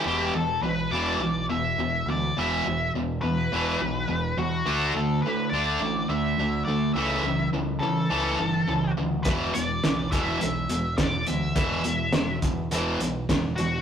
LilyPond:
<<
  \new Staff \with { instrumentName = "Lead electric guitar" } { \time 4/4 \key d \major \tempo 4 = 104 g'8 a'8 b'8 d''4 e''4 d''8 | e''4 r8 b'2 fis'8~ | fis'8 a'8 b'8 d''4 e''4 d''8 | e''4 r8 a'2 r8 |
b'8 d''4 e''8 e''4 d''8 e''8~ | e''4. r2 fis'8 | }
  \new Staff \with { instrumentName = "Distorted electric guitar" } { \clef bass \time 4/4 \key d \major <e, b, e>8 <e, b,>8 <e, b,>8 <e, b, e>8 <e, b,>8 <e, b,>8 <e, b,>8 <e, b,>8 | <e, b, e>8 <e, b,>8 <e, b,>8 <e, b,>8 <e, b, e>8 <e, b,>8 <e, b,>8 <e, b,>8 | <d a d'>8 <d a>8 <d a>8 <d a d'>8 <d a>8 <d a>8 <d a>8 <d a>8 | <cis e a>8 <cis e>8 <cis e>8 <cis e>8 <cis e a>8 <cis e>8 <cis e>8 <cis e>8 |
<e, b, e>8 <e, b,>8 <e, b,>8 <e, b, e>8 <e, b,>8 <e, b,>8 <e, b,>8 <e, b,>8 | <e, b, e>8 <e, b,>8 <e, b,>8 <e, b,>8 <e, b, e>8 <e, b,>8 <e, b,>8 <e, b,>8 | }
  \new Staff \with { instrumentName = "Picked electric bass" } { \clef bass \time 4/4 \key d \major e,,8 e,,8 b,,8 e,,8 b,,8 e,,8 e,,8 d,8 | e,,8 e,,8 e,,8 e,8 e,,8 b,,8 e,,8 e,8 | d,8 d,8 a,8 d,8 a,,8 d,8 d,8 d,8 | cis,8 cis,8 cis,8 cis8 cis,8 g,,8 cis,8 d,8 |
e,,8 e,,8 b,,8 e,,8 b,,8 e,,8 e,,8 d,8 | e,,8 e,,8 e,,8 e,8 e,,8 b,,8 e,,8 e,,8 | }
  \new DrumStaff \with { instrumentName = "Drums" } \drummode { \time 4/4 r4 r4 r4 r4 | r4 r4 r4 r4 | r4 r4 r4 r4 | r4 r4 r4 r4 |
<hh bd>8 hh8 <hh sn>8 <hh bd>8 hh8 hh8 <hh bd sn>8 hh8 | <hh bd>8 hh8 <hh sn>8 <hh bd>8 hh8 hh8 <hh bd sn>8 hh8 | }
>>